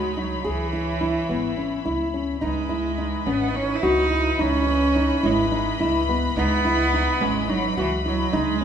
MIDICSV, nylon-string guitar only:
0, 0, Header, 1, 2, 480
1, 0, Start_track
1, 0, Key_signature, 4, "minor"
1, 0, Tempo, 563380
1, 378, Time_signature, 7, 3, 24, 8
1, 7365, End_track
2, 0, Start_track
2, 0, Title_t, "Nylon-string guitar"
2, 0, Program_c, 0, 24
2, 143, Note_on_c, 0, 63, 64
2, 323, Note_off_c, 0, 63, 0
2, 379, Note_on_c, 0, 68, 93
2, 561, Note_off_c, 0, 68, 0
2, 621, Note_on_c, 0, 64, 72
2, 803, Note_off_c, 0, 64, 0
2, 859, Note_on_c, 0, 64, 74
2, 1041, Note_off_c, 0, 64, 0
2, 1101, Note_on_c, 0, 59, 82
2, 1283, Note_off_c, 0, 59, 0
2, 1339, Note_on_c, 0, 61, 65
2, 1522, Note_off_c, 0, 61, 0
2, 1580, Note_on_c, 0, 64, 80
2, 1763, Note_off_c, 0, 64, 0
2, 1821, Note_on_c, 0, 61, 72
2, 2004, Note_off_c, 0, 61, 0
2, 2056, Note_on_c, 0, 63, 89
2, 2240, Note_off_c, 0, 63, 0
2, 2294, Note_on_c, 0, 64, 84
2, 2480, Note_off_c, 0, 64, 0
2, 2540, Note_on_c, 0, 63, 75
2, 2723, Note_off_c, 0, 63, 0
2, 2783, Note_on_c, 0, 61, 83
2, 2965, Note_off_c, 0, 61, 0
2, 3021, Note_on_c, 0, 63, 73
2, 3204, Note_off_c, 0, 63, 0
2, 3263, Note_on_c, 0, 66, 87
2, 3445, Note_off_c, 0, 66, 0
2, 3497, Note_on_c, 0, 64, 74
2, 3681, Note_off_c, 0, 64, 0
2, 3739, Note_on_c, 0, 63, 97
2, 3922, Note_off_c, 0, 63, 0
2, 3977, Note_on_c, 0, 61, 78
2, 4161, Note_off_c, 0, 61, 0
2, 4222, Note_on_c, 0, 63, 81
2, 4404, Note_off_c, 0, 63, 0
2, 4458, Note_on_c, 0, 64, 96
2, 4642, Note_off_c, 0, 64, 0
2, 4700, Note_on_c, 0, 63, 75
2, 4883, Note_off_c, 0, 63, 0
2, 4945, Note_on_c, 0, 64, 94
2, 5126, Note_off_c, 0, 64, 0
2, 5186, Note_on_c, 0, 59, 79
2, 5366, Note_off_c, 0, 59, 0
2, 5427, Note_on_c, 0, 63, 102
2, 5606, Note_off_c, 0, 63, 0
2, 5665, Note_on_c, 0, 64, 86
2, 5845, Note_off_c, 0, 64, 0
2, 5909, Note_on_c, 0, 63, 75
2, 6087, Note_off_c, 0, 63, 0
2, 6145, Note_on_c, 0, 61, 90
2, 6324, Note_off_c, 0, 61, 0
2, 6382, Note_on_c, 0, 63, 85
2, 6563, Note_off_c, 0, 63, 0
2, 6623, Note_on_c, 0, 66, 83
2, 6803, Note_off_c, 0, 66, 0
2, 6864, Note_on_c, 0, 64, 77
2, 7043, Note_off_c, 0, 64, 0
2, 7095, Note_on_c, 0, 63, 90
2, 7277, Note_off_c, 0, 63, 0
2, 7336, Note_on_c, 0, 61, 79
2, 7365, Note_off_c, 0, 61, 0
2, 7365, End_track
0, 0, End_of_file